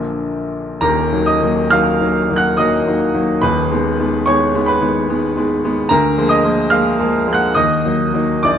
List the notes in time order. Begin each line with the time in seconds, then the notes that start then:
Already playing: A#1 A#2 D3 F3 A#3
0.81 D#1 D#2 A#4 A#5
1.12 D#3 F#3 A#3
1.26 D#5 D#6
1.42 D#3 F#3 A#3
1.70 D#3 F#3 A#3 F5 F6
2.01 D#3 F#3 A#3
2.29 D#3 F#3 A#3
2.36 F#5 F#6
2.57 D#3 F#3 A#3 D#5 D#6
2.87 D#3 F#3 A#3
3.14 D#3 F#3 A#3
3.41 D#1 D#2 B4 B5
3.71 D#3 G#3 B3
3.99 D#3 G#3 B3
4.26 D#3 G#3 B3 C#5 C#6
4.55 D#3 G#3 B3
4.66 B4 B5
4.81 D#3 G#3 B3
5.09 D#3 G#3 B3
5.36 D#3 G#3 B3
5.64 D#3 G#3 B3
5.89 D2 A#4 A#5
6.18 F3 G#3 A#3
6.29 D#5 D#6
6.44 F3 G#3 A#3
6.70 F3 G#3 A#3 F5 F6
6.99 F3 G#3 A#3
7.27 F3 G#3 A#3
7.33 F#5 F#6
7.54 D#2 D#5 D#6
7.85 F#3 A#3 D#4
8.14 F#3 A#3 D#4
8.43 A#1 D5 D6